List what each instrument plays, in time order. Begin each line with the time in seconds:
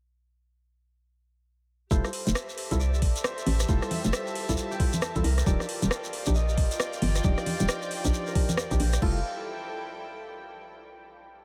1.91 fm bass F1, synth stab G3 E4 F4 A4, string section G4, string machine G4 A4 C5 E5, harp C5, kick, shekere
2.04 cross-stick, shekere
2.13 open hi-hat
2.27 fm bass F1, string section E5, closed hi-hat, shekere
2.35 cross-stick, shekere
2.49 shekere
2.58 string section A5, open hi-hat
2.71 fm bass C2, synth stab G3 E4 F4 A4, kick, closed hi-hat, shekere
2.80 harp D5, shekere
2.94 shekere
3.02 fm bass A1, kick, open hi-hat
3.16 closed hi-hat, shekere
3.24 harp C5, cross-stick, shekere
3.38 closed hi-hat, shekere
3.46 fm bass A1, open hi-hat, high conga
3.60 cross-stick, closed hi-hat, shekere
3.69 fm bass F1, synth stab G3 E4 F4 A4, harp C5, kick, shekere
3.82 cross-stick, shekere
3.91 open hi-hat, high conga
4.04 fm bass F1, closed hi-hat, shekere
4.13 cross-stick, shekere
4.27 shekere
4.35 open hi-hat
4.49 fm bass C2, synth stab G3 E4 F4 A4, kick, closed hi-hat, shekere
4.57 shekere
4.71 harp G4, shekere
4.80 synth stab G3 E4 F4 A4, kick, open hi-hat
4.93 closed hi-hat, high conga, shekere
5.02 cross-stick, shekere
5.16 fm bass C2, synth stab G3 E4 F4 A4, kick, closed hi-hat, high conga, shekere
5.24 fm bass C2, harp A#4, open hi-hat
5.38 cross-stick, closed hi-hat, shekere
5.46 fm bass D#1, synth stab F3 D4 D#4 G4, string section F4, string machine F4 A#4 D5, harp D5, kick, shekere
5.60 cross-stick, shekere
5.66 string section G5, open hi-hat
5.75 string section D5
5.82 fm bass D#1, closed hi-hat, shekere
5.91 cross-stick, shekere
6.04 shekere
6.13 open hi-hat
6.26 fm bass A#1, synth stab F3 D4 D#4 G4, kick, closed hi-hat, shekere
6.35 harp D#5, shekere
6.49 shekere
6.58 fm bass G1, kick, open hi-hat
6.71 closed hi-hat, shekere
6.80 harp D5, cross-stick, shekere
6.93 closed hi-hat, shekere
7.02 fm bass G1, open hi-hat, high conga
7.16 cross-stick, closed hi-hat, shekere
7.24 fm bass D#1, synth stab F3 D4 D#4 G4, string machine C5, harp D5, kick, shekere
7.38 cross-stick, shekere
7.46 open hi-hat, high conga
7.59 fm bass D#1, closed hi-hat, shekere
7.68 cross-stick, shekere
7.82 shekere
7.91 open hi-hat
8.05 fm bass A#1, synth stab F3 D4 D#4 G4, kick, closed hi-hat, shekere
8.14 shekere
8.27 harp A#4, shekere
8.35 synth stab F3 D4 D#4 G4, kick, open hi-hat
8.49 closed hi-hat, high conga, shekere
8.57 cross-stick, shekere
8.71 fm bass A#1, synth stab F3 D4 D#4 G4, kick, closed hi-hat, high conga, shekere
8.80 fm bass A#1, harp G4, open hi-hat
8.93 cross-stick, closed hi-hat, shekere
9.02 fm bass F1, synth stab G3 E4 F4 A4, string section E4, harp F4, kick, crash
9.11 string section A4
9.18 string section G5